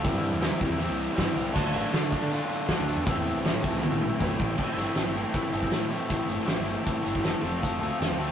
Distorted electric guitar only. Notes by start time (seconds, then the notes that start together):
0.03 C3 E3 G3 C4 E4
0.41 C3 E3 G3 C4 E4
0.61 G3 C4 E4
0.77 E3 G3 C4 E4
1.15 E3 G3 C4 E4
1.34 G3 C4 E4
1.53 D3 A3 D4 F4
1.92 D3 A3 D4 F4
2.11 A3 D4 F4
2.31 D3 A3 D4 F4
2.68 D3 A3 D4 F4
2.87 A3 D4 F4
3.05 A2 E3 A3 C4 E4
3.43 A2 E3 A3 C4 E4
3.63 A3 C4 E4
3.80 E3 A3 C4 E4
4.19 E3 A3 C4 E4
4.38 A3 C4 E4
4.56 A2 E3 A3 C4 E4
4.77 A2 E3 A3 C4 E4
4.96 A2 E3 A3 C4 E4
5.15 A2 E3 A3 C4 E4
5.34 A2 E3 A3 C4 E4
5.53 A2 E3 A3 C4 E4
5.71 A2 E3 A3 C4 E4
5.89 A2 E3 A3 C4 E4
6.09 A2 E3 A3 C4 E4
6.28 A2 E3 A3 C4 E4
6.46 A2 E3 A3 C4 E4
6.63 A2 E3 A3 C4 E4
6.84 A2 E3 A3 C4 E4
7.03 A2 E3 A3 C4 E4
7.24 A2 E3 A3 C4 E4
7.42 F3 A3 C4 F4
7.62 F3 A3 C4 F4
7.80 F3 A3 C4 F4
7.99 F3 A3 C4 F4
8.18 F3 A3 C4 F4